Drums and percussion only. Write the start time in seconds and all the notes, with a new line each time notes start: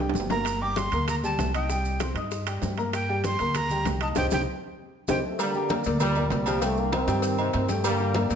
0.09 high timbale
0.14 low bongo, high conga, maracas
0.20 low timbale
0.30 low bongo, high conga, low timbale, maracas
0.45 high bongo, high conga, high timbale, maracas
0.61 high conga
0.76 high bongo, high conga, high timbale, low timbale, maracas
0.92 high bongo, high conga, high timbale, maracas
1.08 high bongo, high conga, low conga, high timbale, maracas
1.24 high bongo, high conga, low conga, maracas
1.39 high bongo, low bongo, high conga, high timbale, low timbale, maracas
1.54 high bongo, high conga, high timbale, maracas
1.70 high bongo, high conga, maracas
1.85 high conga, maracas
2.00 high bongo, high conga, high timbale, low timbale, maracas
2.16 high bongo, high conga, high timbale, maracas
2.31 high bongo, high conga, maracas
2.47 high bongo, high conga, high timbale, maracas
2.62 high bongo, low bongo, high conga, low timbale, maracas
2.78 high bongo, high conga, high timbale, maracas
2.93 high bongo, high conga, high timbale, maracas
3.09 high conga
3.24 high bongo, high conga, high timbale, low timbale, maracas
3.39 high bongo, high conga, high timbale, maracas
3.54 high bongo, high conga, low conga, high timbale, maracas
3.70 high bongo, high conga, low conga, maracas
3.85 high bongo, low bongo, high conga, high timbale, low timbale, maracas
4.01 high bongo, high conga, high timbale, maracas
4.16 high bongo, high conga, high timbale, maracas
4.31 high bongo, high conga, high timbale, maracas
5.08 high bongo, high conga, high timbale, maracas
5.39 cowbell, high conga, low agogo, maracas
5.54 high conga, maracas
5.69 cowbell, high conga, low timbale, low agogo, maracas
5.84 cowbell, high conga, maracas
6.00 cowbell, high conga, low conga, low agogo, maracas
6.15 high conga, low conga, low agogo, maracas
6.30 cowbell, high conga, low timbale, maracas
6.46 cowbell, low agogo, maracas
6.62 cowbell, high conga, low agogo, maracas
6.77 high conga, maracas
6.92 cowbell, high conga, low timbale, low agogo, maracas
7.08 cowbell, high conga, low agogo, maracas
7.22 cowbell, high conga, maracas
7.38 high conga, low agogo, maracas
7.53 cowbell, high conga, low timbale, low agogo, maracas
7.68 cowbell, high conga, maracas
7.84 cowbell, high conga, low agogo, maracas
7.99 high conga, maracas
8.14 cowbell, high conga, low timbale, low agogo, maracas
8.30 cowbell, high conga, maracas